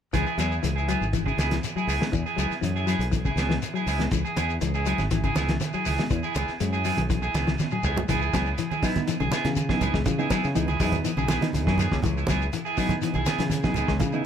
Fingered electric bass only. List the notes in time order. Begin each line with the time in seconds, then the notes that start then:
0.14 C#2
0.38 E2
0.64 C#2
1.01 G#1
1.38 C#2
1.75 muted fingered electric bass stroke
1.87 C#2
2.13 E2
2.38 C#2
2.50 muted fingered electric bass stroke
2.62 F#2
2.99 B1
3.36 C#2
3.86 C#2
4.12 C#2
4.37 E2
4.62 C#2
5.00 G#1
5.36 C#2
5.74 muted fingered electric bass stroke
5.87 C#2
6.11 E2
6.36 C#2
6.60 F#2
6.98 B1
7.34 C#2
7.83 C#2
8.09 C#2
8.33 C#2
9.20 B1
9.45 C#3
9.81 C#2
9.94 C#2
10.06 C#3
10.45 C#3
10.56 C#2
10.80 E2
11.17 B1
11.54 C#2
11.67 F#2
11.92 C#2
12.04 C#2
12.28 C#2
13.15 B1
13.40 C#3
13.77 C#2
13.88 C#2
14.01 C#3